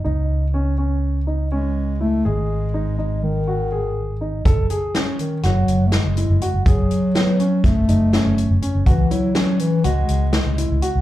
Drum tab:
HH |---------|---------|xxxxxxxxx|xxxxxxxxx|
SD |---------|---------|--o-o-o--|--o-o-o--|
BD |---------|---------|o--------|o---o----|

HH |xxxxxxxxx|
SD |--o---o--|
BD |o--------|